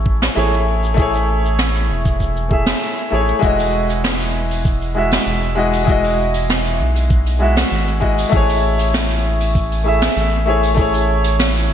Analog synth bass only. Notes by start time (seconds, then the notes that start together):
Already playing: A1
0.37 A1
1.90 E1
3.12 A1
3.43 E1
5.27 E1
6.80 B1
7.72 G#1
8.33 A1
10.17 A1
11.69 E1